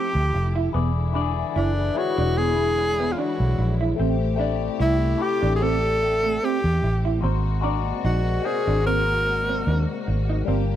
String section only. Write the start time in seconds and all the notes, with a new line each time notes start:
Already playing: A3 E4 G4
0.73 D3 G#3 E4
3.97 C3 A3 G4
7.22 A#3 F#4
10.47 F3 G4